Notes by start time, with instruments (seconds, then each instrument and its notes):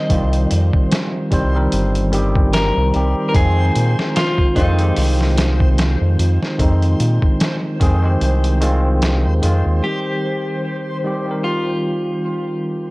Already playing: tine electric piano D#3 G3 C4 G4 A#4, synth texture C5, clean electric guitar D#5
0.09 analog synth bass C2, tine electric piano D#3 G3 C4 F4, kick, closed hi-hat
0.33 closed hi-hat
0.47 clean electric guitar D5, closed hi-hat
0.52 analog synth bass F2
0.73 kick
0.91 snare, closed hi-hat
1.31 analog synth bass C2, tine electric piano D#3 G3 C4 C5, kick, closed hi-hat
1.54 tine electric piano D#3 G3 C4 A#4
1.72 analog synth bass G1, closed hi-hat
1.95 closed hi-hat
2.12 tine electric piano D#3 G3 C4 G4, closed hi-hat
2.36 kick
2.53 clean electric guitar A#4, snare, closed hi-hat
2.77 analog synth bass C2
2.94 analog synth bass C2, tine electric piano D#3 G3 C4 G4, closed hi-hat
3.29 tine electric piano D#3, clean electric guitar A#4
3.35 analog synth bass F2, tine electric piano G#3 C4 F4, clean electric guitar G#4, kick, closed hi-hat
3.76 analog synth bass A#2, closed hi-hat
3.99 snare
4.16 clean electric guitar F4, snare, closed hi-hat
4.38 kick
4.55 analog synth bass F2, tine electric piano D#3 G#3 C4 F4, clean electric guitar D#4, kick, closed hi-hat
4.77 tine electric piano D#3 G#3 C4, closed hi-hat
4.83 tine electric piano G4
4.97 analog synth bass C2, open hi-hat
5.21 snare
5.37 snare, closed hi-hat
5.60 kick
5.78 snare, closed hi-hat
6.01 analog synth bass F2
6.19 analog synth bass F2, closed hi-hat
6.42 snare
6.58 analog synth bass F2, tine electric piano D#3 G#3 C4 D#4, kick, closed hi-hat
6.83 closed hi-hat
7.00 analog synth bass A#2, closed hi-hat
7.23 kick
7.28 clean electric guitar D4
7.41 snare, closed hi-hat
7.80 analog synth bass F2, tine electric piano D#3 G#3 C4 G#4, kick, closed hi-hat
8.03 tine electric piano D#3 G#3 C4 G4
8.21 analog synth bass C2, closed hi-hat
8.44 closed hi-hat
8.61 tine electric piano D#3 G#3 C4 F4, closed hi-hat
9.02 snare, closed hi-hat
9.26 analog synth bass D#2
9.42 analog synth bass F2, tine electric piano D#3 G#3 C4 F4, closed hi-hat
9.66 analog synth bass D#2
9.80 tine electric piano D#3 G3 C4, clean electric guitar G4, synth texture C5
9.86 tine electric piano G4
11.04 tine electric piano D#3 G3 C4 G4
11.25 tine electric piano D#3 G3 C4
11.31 tine electric piano A#4
11.44 clean electric guitar F4